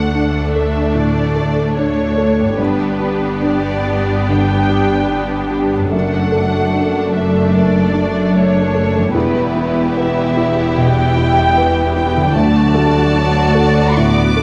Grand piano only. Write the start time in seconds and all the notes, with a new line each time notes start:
Already playing: D2 A4
0.14 D4
0.56 A4
0.95 A2
1.36 A4
1.77 D4
2.18 A4
2.58 G2
3.00 G4
3.42 D4
3.85 G4
4.29 D3
4.70 G4
5.11 D4
5.51 G4
5.91 F#2
6.32 A4
6.74 D4
7.14 A4
7.54 F#2
7.94 D4
8.35 A3
8.75 A4
9.14 E2
9.56 E4
9.97 B3
10.37 E4
10.77 B2
11.17 E4
11.58 B3
11.97 E4
12.35 D2
12.74 A4
13.13 D4
13.55 A4
13.97 A2
14.37 A4